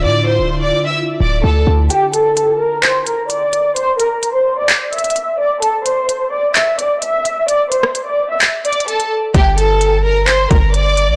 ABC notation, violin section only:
X:1
M:4/4
L:1/16
Q:1/4=129
K:Gdor
V:1 name="Violin section"
[dd']2 [cc']3 [dd']2 [ee'] z2 [dd']2 [Aa]2 z2 | [Gg]2 [Aa]4 [Bb]2 [cc']2 [Bb]2 [dd']4 | [cc']2 [Bb]3 [cc']2 [dd'] z2 [ee']4 [dd']2 | [Aa]2 [cc']4 [dd']2 [ee']2 [dd']2 [ee']4 |
[dd']2 [cc']3 [dd']2 [ee'] z2 [dd']2 [Aa]2 z2 | [Gg]2 [Aa]4 [Bb]2 [cc']2 [Bb]2 [dd']4 |]